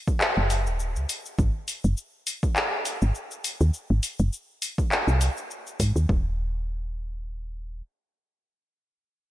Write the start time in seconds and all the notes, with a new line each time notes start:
0.08 kick, shaker
0.21 clap, shaker
0.37 F#1
0.50 open hi-hat, shaker
0.66 D#1, shaker
0.80 shaker
0.96 C#2, shaker
1.09 open hi-hat, shaker
1.26 shaker
1.39 G#1, kick, shaker
1.68 open hi-hat, shaker
1.84 F#1, shaker
1.97 shaker
2.27 open hi-hat, shaker
2.43 kick, shaker
2.56 clap, shaker
2.85 open hi-hat, shaker
3.02 G#1, shaker
3.15 shaker
3.31 shaker
3.44 open hi-hat, shaker
3.61 D#2, shaker
3.74 shaker
3.90 G#1
4.03 open hi-hat, shaker
4.19 F#1, shaker
4.33 shaker
4.62 open hi-hat, shaker
4.78 kick, shaker
4.92 clap, shaker
5.08 C2, shaker
5.21 open hi-hat, shaker
5.37 shaker
5.51 shaker
5.67 shaker
5.80 G#2, kick, open hi-hat, shaker
5.96 D#2, shaker
6.09 D#1, kick